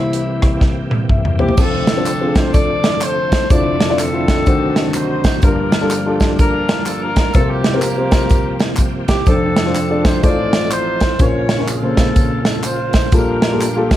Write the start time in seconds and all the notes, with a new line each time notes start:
Already playing: C2 C3 E3 A#3 C4 E4 G4
0.13 closed hi-hat
0.42 kick, cross-stick, closed hi-hat
0.61 kick, snare
0.91 high tom
1.09 E5, kick, mid tom
1.25 mid tom
1.39 A#3 C4 E4 G4, floor tom
1.49 floor tom
1.57 F1 F2 D3 A3 C4 D4 E4 F4 A4, kick, crash, tambourine
1.63 F4
1.87 snare, closed hi-hat, tambourine
1.97 C4 D4 F4 A4
2.06 clap, closed hi-hat, tambourine
2.21 C4 D4 F4 G#4
2.28 A4
2.35 C5, kick, snare, closed hi-hat, tambourine
2.54 A4 D5, kick, closed hi-hat, tambourine
2.83 snare, closed hi-hat, tambourine
3.01 A4 C5, clap, closed hi-hat, tambourine
3.32 kick, snare, closed hi-hat, tambourine
3.50 F1 F2 D3 F3 C4 D4 E4 F4 A4 C5 D5 E5, kick, closed hi-hat, tambourine
3.80 snare, closed hi-hat, tambourine
3.89 D4 E4 F4 D5
3.99 C4 D4 A4, clap, closed hi-hat, tambourine
4.13 D4 E4 F4 A4
4.28 kick, snare, closed hi-hat, tambourine
4.46 D2 C3 D3 D#3 F#3 C4 D4 F#4 C5 D#5, kick, closed hi-hat, tambourine
4.76 snare, closed hi-hat, tambourine
4.94 D#4 F#4 C5, clap, closed hi-hat, tambourine
5.24 kick, snare, closed hi-hat, tambourine
5.42 G1 G2 F3 A#3 D4 F4 G4 A#4, kick, closed hi-hat, tambourine
5.72 snare, closed hi-hat, tambourine
5.81 D4 F4 G4 A4
5.90 clap, closed hi-hat, tambourine
6.06 D4 F4 G4 A4
6.20 kick, snare, closed hi-hat, tambourine
6.39 D4 F4 A#4, kick, closed hi-hat, tambourine
6.68 snare, closed hi-hat, tambourine
6.86 A4, clap, closed hi-hat, tambourine
7.02 D4 F4 A#4
7.16 kick, snare, closed hi-hat, tambourine
7.34 C2 C3 F3 A#3 C4 F4 G4 A4 A#4, kick, closed hi-hat, tambourine
7.41 G4
7.50 A#3 G4
7.64 snare, closed hi-hat, tambourine
7.74 C4 F4 G4 A#4
7.82 F4 G4 A#4, clap, closed hi-hat, tambourine
7.98 C4 F4 G4 C5
8.11 kick, snare, closed hi-hat, tambourine
8.29 kick, closed hi-hat, tambourine
8.59 snare, closed hi-hat, tambourine
8.76 kick, clap, closed hi-hat, tambourine
9.08 G4, kick, snare, closed hi-hat, tambourine
9.26 F1 F2 F3 C4 D4 F4 G4 A4 C5, kick, closed hi-hat, tambourine
9.32 A4
9.56 snare, closed hi-hat, tambourine
9.65 D4 F4 A4 C5
9.75 clap, closed hi-hat, tambourine
9.90 D4 F4 A4 D5
10.05 C5, kick, snare, closed hi-hat, tambourine
10.22 A1 A2 F3 C4 D#4 F4 G#4 A4 C5 D5, kick, closed hi-hat, tambourine
10.29 A4
10.53 snare, closed hi-hat, tambourine
10.71 D#4 F4 C5, clap, closed hi-hat, tambourine
11.01 kick, snare, closed hi-hat, tambourine
11.19 A#1 A#2 C#3 A#3 C#4 F4 A#4 C5 C#5, kick, closed hi-hat, tambourine
11.49 snare, closed hi-hat, tambourine
11.58 C#4 F4 A#4 C#5
11.68 C4 C#4 A4, clap, closed hi-hat, tambourine
11.83 C#3 A#3 F4 C5
11.97 kick, snare, closed hi-hat, tambourine
12.16 kick, closed hi-hat, tambourine
12.45 snare, closed hi-hat, tambourine
12.63 F4 C5, clap, closed hi-hat, tambourine
12.93 kick, snare, closed hi-hat, tambourine
13.12 A#1 A#2 G3 A#3 D4 F4 G4 A4 A#4, kick, closed hi-hat, tambourine
13.42 snare, closed hi-hat, tambourine
13.52 A#3 F4 G4 A4
13.61 clap, closed hi-hat, tambourine
13.76 A#3 F4 G4 A4
13.91 kick, snare, closed hi-hat, tambourine